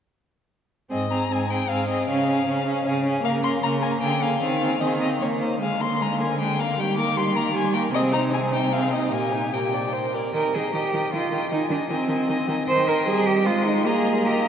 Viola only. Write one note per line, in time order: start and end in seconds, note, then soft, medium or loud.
0.90 1.09 C4 soft
1.10 1.30 C4 soft
1.30 1.49 C4 soft
1.50 1.69 C4 soft
1.69 1.88 C4 soft
1.89 2.08 C4 soft
2.09 2.27 C#4 soft
2.27 2.46 C#4 soft
2.46 2.65 C#4 soft
2.66 2.84 C#4 soft
2.85 3.03 C#4 soft
3.04 3.22 C#4 soft
3.23 3.42 A#3 medium
3.42 3.62 A#3 soft
3.62 3.81 A#3 soft
3.83 4.00 A#3 soft
4.01 4.20 A#3 soft
4.21 4.41 A#3 soft
4.42 4.60 C4 soft
4.61 4.80 C4 soft
4.81 4.99 C4 soft
5.00 5.20 C4 soft
5.21 5.40 A#3 soft
5.41 5.60 A#3 soft
5.61 5.82 G#3 soft
5.81 6.02 A#3 soft
6.01 6.22 G#3 soft
6.20 6.39 A#3 soft
6.40 6.60 G#3 soft
6.58 6.77 A#3 soft
6.77 6.99 G3 soft
6.97 7.17 A#3 soft
7.16 7.37 G3 soft
7.36 7.54 A#3 soft
7.55 7.76 G3 soft
7.74 7.92 A#3 soft
7.93 8.13 C4 medium
8.12 8.33 D#4 soft
8.31 8.54 C4 medium
8.52 8.71 D#4 soft
8.71 8.93 C4 soft
8.91 9.11 D#4 soft
9.12 9.33 G4 soft
9.32 9.53 D#4 soft
9.53 9.75 G4 soft
9.74 9.95 D5 soft
9.93 10.16 C5 soft
10.14 10.33 A#4 soft
10.34 10.42 D#3 soft
10.55 10.63 D#3 soft
10.74 10.82 D#3 soft
10.93 11.01 D#3 soft
11.13 11.21 D#3 soft
11.32 11.40 D#3 soft
11.51 11.59 D#3 soft
11.70 11.78 D#3 soft
11.90 11.98 D#3 soft
12.08 12.16 D#3 soft
12.29 12.37 D#3 soft
12.48 12.56 D#3 soft
12.68 13.08 D#3 soft
13.07 13.47 G3 medium
13.46 13.87 G#3 soft
13.85 14.48 A#3 soft